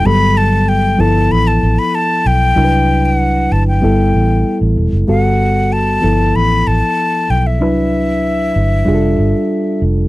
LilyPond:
<<
  \new Staff \with { instrumentName = "Flute" } { \time 4/4 \key g \major \tempo 4 = 95 b''8 a''8 g''8 a''8 b''16 a''8 b''16 a''8 g''8~ | g''8. fis''8. a''16 g''4. r8. | fis''4 a''4 b''8 a''4 g''16 e''16~ | e''2.~ e''8 r8 | }
  \new Staff \with { instrumentName = "Reed electric piano" } { \time 4/4 \key g \major <fis g b a'>4. <f b e' a'>2~ <f b e' a'>8 | <fis d' e' bes' b'>2 <g b e' a'>2 | <g b fis' a'>4. <f b e' a'>2~ <f b e' a'>8 | <fis d' e' b'>2 <g d' f' aes' a'>2 | }
  \new Staff \with { instrumentName = "Fingered electric bass" } { \clef bass \time 4/4 \key g \major g,,4. g,,8 a,,8 a,,16 r8. b,,8 | c,4. g,,8 g,,8 a,,8 r16 a,,16 e,,16 fis,,16 | g,,4. g,,8 a,,8 a,,16 r8. b,,8 | c,4. g,,8 f,,8 g,,16 r8. f,,8 | }
>>